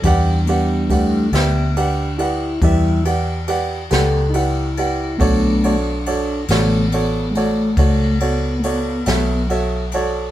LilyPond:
<<
  \new Staff \with { instrumentName = "Upright piano" } { \time 12/8 \key b \minor \tempo 4. = 47 <g' b' d'' fis''>8 <g' b' d'' fis''>8 <g' b' d'' fis''>8 <g' b' d'' e''>8 <g' b' d'' fis''>8 <g' b' d'' fis''>8 <g' b' d'' e''>8 <g' b' d'' fis''>8 <g' b' d'' fis''>8 <g' b' d'' fis''>8 <g' b' d'' fis''>8 <g' b' d'' fis''>8 | <fis' a' cis'' d''>8 <fis' a' cis'' d''>8 <fis' a' cis'' d''>8 <fis' a' cis'' d''>8 <fis' a' cis'' d''>8 <fis' a' cis'' d''>8 <fis' a' cis'' d''>8 <fis' a' cis'' d''>8 <fis' a' cis'' d''>8 <fis' a' cis'' e''>8 <fis' a' cis'' e''>8 <fis' a' cis'' d''>8 | }
  \new Staff \with { instrumentName = "Tonewheel organ" } { \time 12/8 \key b \minor << { r8 <ais b>8 a8 b8 d'8 e'8 <g e'>8 r4 a'8 <dis' e'>4 | d'4. b4 <gis a>4 b8 <ais b>4 r4 | } \\ { <e g d'>4. r1 r8 | <d a b>8 r4 <cis d a>8 r1 | } >> }
  \new Staff \with { instrumentName = "Fingered electric bass" } { \clef bass \time 12/8 \key b \minor e,4. d,4. e,4. cis,4. | b,,4. a,,4. cis,4. b,,4. | }
  \new DrumStaff \with { instrumentName = "Drums" } \drummode { \time 12/8 <bd cymr>8 cymr8 <bd cymr>8 <cymr sn>8 cymr8 cymr8 <bd cymr>8 cymr8 cymr8 <cymr sn>8 cymr8 cymr8 | <bd cymr>8 cymr8 cymr8 <cymr sn>8 cymr8 cymr8 <bd cymr>8 cymr8 cymr8 <cymr sn>8 cymr8 cymr8 | }
>>